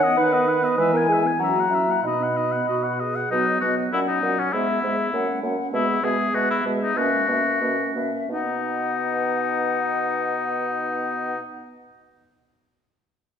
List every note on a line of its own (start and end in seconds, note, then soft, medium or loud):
0.00 0.10 D#3 medium
0.00 0.17 B3 soft
0.00 0.18 D#5 medium
0.00 0.50 F#5 medium
0.17 0.72 D#3 medium
0.17 0.34 D#4 medium
0.17 0.77 B4 medium
0.17 0.34 F#5 medium
0.32 0.49 B3 soft
0.32 0.50 D#5 medium
0.47 0.63 D#4 soft
0.47 0.66 F#5 medium
0.62 0.77 B3 soft
0.62 0.79 D#5 soft
0.77 1.32 E3 medium
0.77 0.94 G#3 medium
0.77 0.93 B4 medium
0.77 0.98 E5 medium
0.77 1.41 G#5 medium
0.93 1.09 B3 soft
0.93 1.08 A#4 medium
0.93 1.14 G#5 soft
1.08 1.26 G#3 soft
1.08 1.23 G#4 medium
1.13 1.29 E5 soft
1.24 1.39 B3 soft
1.24 1.41 G#5 soft
1.40 1.96 F#3 soft
1.40 1.57 C#4 soft
1.40 1.70 F#4 medium
1.40 1.62 E5 soft
1.40 2.04 A#5 medium
1.55 1.72 A#3 soft
1.60 1.76 F#5 soft
1.70 1.89 C#4 soft
1.70 2.05 E4 medium
1.75 1.93 E5 soft
1.88 2.04 A#3 soft
1.88 2.05 F#5 soft
2.03 2.60 B2 soft
2.03 3.00 D#4 soft
2.03 2.22 D#4 soft
2.03 2.25 D#5 soft
2.03 2.98 B5 medium
2.20 2.38 B3 soft
2.20 2.39 F#5 soft
2.37 2.55 D#4 soft
2.37 2.54 D#5 soft
2.52 2.69 B3 soft
2.52 2.67 F#5 soft
2.68 3.24 B2 soft
2.68 3.03 F#4 soft
2.68 2.85 D#5 soft
2.84 3.01 F#5 soft
3.00 3.32 G#4 soft
3.00 3.17 D#5 soft
3.16 3.30 F#5 soft
3.30 3.46 B2 medium
3.30 3.61 F#3 soft
3.30 3.63 B3 soft
3.30 3.60 D#4 medium
3.30 3.61 D#5 soft
3.61 3.76 B2 soft
3.61 3.92 F#3 soft
3.61 3.93 B3 soft
3.61 3.75 F#4 medium
3.61 3.92 D#5 soft
3.92 4.06 A#2 soft
3.92 4.22 F#3 soft
3.92 4.23 C#4 soft
3.92 4.00 E4 medium
3.92 4.22 F#5 soft
4.08 4.41 D#4 medium
4.23 4.36 A#2 soft
4.23 4.52 F#3 soft
4.23 4.53 C#4 soft
4.23 4.53 F#5 soft
4.39 4.55 C#4 medium
4.53 4.67 G#2 soft
4.53 4.82 G#3 soft
4.53 4.83 B3 soft
4.53 5.43 E4 medium
4.53 4.83 E5 soft
4.83 4.97 G#2 soft
4.83 5.12 G#3 soft
4.83 5.12 B3 soft
4.83 5.13 E5 soft
5.13 5.27 F#2 soft
5.13 5.42 A#3 soft
5.13 5.42 C#4 soft
5.13 5.43 F#5 soft
5.42 5.56 F#2 soft
5.42 5.72 A#3 soft
5.42 5.72 C#4 soft
5.42 5.72 F#5 soft
5.72 5.87 B2 medium
5.72 6.02 G#3 soft
5.72 6.03 B3 soft
5.72 6.06 E4 medium
5.72 6.02 E5 medium
6.03 6.17 B2 soft
6.03 6.33 G#3 soft
6.03 6.33 B3 soft
6.03 6.36 G#4 medium
6.03 6.33 E5 soft
6.33 6.48 B2 soft
6.33 6.64 G#3 soft
6.33 6.65 B3 soft
6.33 6.50 F#4 medium
6.33 6.64 E5 soft
6.51 6.65 E4 medium
6.64 6.80 B2 soft
6.64 6.95 G#3 soft
6.64 6.96 B3 soft
6.64 6.96 E5 soft
6.83 6.99 D#4 medium
6.96 7.10 B2 medium
6.96 7.28 A#3 soft
6.96 7.27 C#4 medium
6.96 7.96 F#4 medium
6.96 7.28 E5 soft
7.28 7.43 B2 soft
7.28 7.61 A#3 soft
7.28 7.61 C#4 soft
7.28 7.62 E5 soft
7.61 7.77 B2 soft
7.61 7.94 A#3 soft
7.61 7.95 C#4 soft
7.61 7.96 E5 soft
7.95 8.11 B2 soft
7.95 8.29 A#3 soft
7.95 8.30 C#4 soft
7.95 8.30 E5 soft
8.29 11.36 B2 soft
8.29 11.36 B3 soft
8.29 11.36 D#4 soft
8.29 11.39 D#4 soft
8.29 11.38 F#5 soft